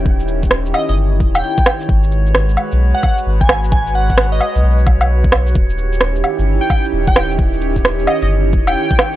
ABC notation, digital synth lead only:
X:1
M:4/4
L:1/16
Q:"Swing 16ths" 1/4=131
K:G#m
V:1 name="Digital synth lead"
z6 d d z3 =g g4 | z8 z f2 z2 g2 z | g2 f3 d4 z6 z | z8 z =g2 z2 g2 z |
z6 d d z3 =g g4 |]